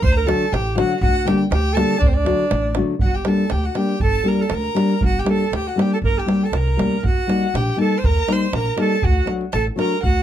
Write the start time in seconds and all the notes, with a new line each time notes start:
0.02 D2 C5 C6, davul low
0.14 A#4 A#5, davul high
0.26 D3 F#3 A3 D4 F#4 A4 A5, davul high
0.52 A1 G4 G5, davul high
0.75 D3 F#3 A3 D4 F#4 F#5, davul high
0.92 davul high
1.00 D2 F#4 F#5, davul low
1.16 davul high
1.25 D3 G3 A#3 D4 G4 G5, davul high
1.51 D2 G4 G5, davul high
1.73 D3 G3 A#3 D4 A4 A5, davul high
1.78 G4
1.91 davul high
1.99 D2 D4 D5, davul low
2.07 C4 C5
2.13 D4 D5
2.25 D3 F#3 A3 D4 F#4, davul high
2.39 davul high
2.51 A1, davul high
2.75 D3 F#3 A3 D4 F#4, davul high
2.99 G1 F#5, davul low
3.04 F#4
3.14 G4 G5
3.25 G3 A#3 D4 G4 A4 A5, davul high
3.37 davul high
3.50 D2 G4 G5, davul high
3.64 F#4 F#5, davul high
3.75 G3 A#3 D4 G4 G5, davul high
3.89 davul high
4.00 G1 A4 A5, davul low
4.23 G3 A#3 D4 G4
4.28 A#4 A#5
4.41 A4 A5
4.50 D2, davul high
4.54 A#4 A#5
4.64 davul high
4.75 G3 A#3 D4 G4, davul high
4.90 davul high
5.01 G1 F#4, davul low
5.06 F#5
5.19 G4 G5
5.25 G3 A#3 D4 G4, davul high
5.30 A4 A5
5.41 davul high
5.52 D2 G4 G5, davul high
5.67 F#4 F#5, davul high
5.76 G3 A#3 D4 G4, davul high
5.80 G4 G5
5.93 A4 A5
6.02 G1 A#4 A#5, davul low
6.17 G4 G5, davul high
6.26 G3 A#3 D4 G4, davul high
6.41 A4 A5, davul high
6.52 C2 A#4, davul high
6.57 A#5
6.68 davul high
6.77 D2 G3 A#3 D4 G4, davul high
6.92 davul high
7.03 D#2 F#4 F#5, davul low
7.27 G3 A#3 D#4 G4, davul high
7.43 davul high
7.54 A#1 G4 G5, davul high
7.70 davul high
7.76 G3 A#3 D#4 G4 A5
7.81 A4
7.92 davul high
7.97 C5 C6
8.04 D#2 A#4 A#5, davul low
8.28 G3 A#3 D#4 G4, davul high
8.32 C5 C6
8.42 davul high
8.53 A#1 A#4 A#5, davul high
8.66 davul high
8.76 G3 A#3 D#4 G4, davul high
8.81 A4 A5
8.90 davul high
9.02 D2 F#4 F#5, davul low
9.26 F#3 A3 D4 F#4, davul high
9.41 davul high
9.52 A1 A4 A5, davul high
9.67 davul high
9.76 F#3 A3 D4 F#4 A#4 A#5, davul high
9.92 davul high
10.03 D2 F#4 F#5, davul low
10.17 davul high